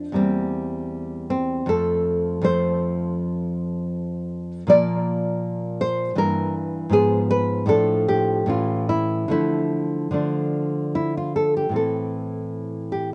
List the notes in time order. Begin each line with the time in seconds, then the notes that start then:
Already playing: F2 F3 A3 D4
0.12 E2 G3 A#3 C4
1.30 C4
1.66 F2 F3 A3 A4
2.41 F2 F3 A3 C5
4.67 A#2 F3 A#3 D5
5.81 C5
6.15 G2 E3 A#3 A#4
6.89 G#2 F3 B3 G#4
7.31 B4
7.66 A2 F3 D4 A4
8.08 G4
8.46 A2 E3 C#4 F4
8.89 E4
9.28 D3 F3 A3 E4
10.11 D3 F3 A3 D4
10.95 E4
11.17 F4
11.36 A4
11.57 G4
11.69 A2 E3
11.73 C4 A4
12.92 G4